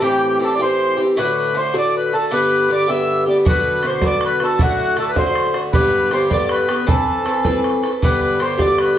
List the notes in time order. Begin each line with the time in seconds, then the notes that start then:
0.00 A2 E3 C4 G4
0.39 A2 E3 C4 G4
0.44 A4
0.54 D5
0.59 A2 E3 C4 G4 C5
0.97 E3 C4 G4
1.17 A2 D3 A3 F#4 B4
1.38 B4
1.54 A2 D3 A3 F#4 C5
1.74 A2 D3 A3 F#4 D5
1.97 B4
2.13 D3 A3 F#4 A4
2.31 G2 D3 B3 G4 B4
2.69 G2 D3 B3 G4 D5
2.88 G2 D3 B3 G4 E5
3.26 D3 B3 G4 D5
3.45 B2 D3 B3 F#4 B4, bodhran
3.83 B2 D3 B3 F#4 C5, bodhran
4.01 B2 D3 B3 F#4, bodhran
4.06 D5
4.21 bodhran
4.26 B4
4.40 D3 B3 F#4 A4, bodhran
4.59 A2 D3 A3 F#4, bodhran
4.63 F#4
4.78 bodhran
4.96 A2 D3 A3 F#4 A4, bodhran
5.09 B4
5.16 A2 D3 A3 F#4 C5, bodhran
5.35 bodhran
5.54 D3 A3 F#4, bodhran
5.73 G2 D3 B3 G4 B4, bodhran
5.92 bodhran
6.11 G2 D3 B3 G4 C5, bodhran
6.30 G2 D3 B3 G4 D5, bodhran
6.49 B4, bodhran
6.68 D3 B3 G4, bodhran
6.86 E3 C4 A4 B4, bodhran
7.08 bodhran
7.25 E3 C4 A4 B4, bodhran
7.45 E3 C4 A4 B4, bodhran
7.64 bodhran
7.83 C4 A4 B4, bodhran
8.02 G2 D3 B3 G4 B4, bodhran
8.21 B4, bodhran
8.39 G2 D3 B3 G4 C5, bodhran
8.58 G2 D3 B3 G4 D5, bodhran
8.78 B4, bodhran
8.95 G4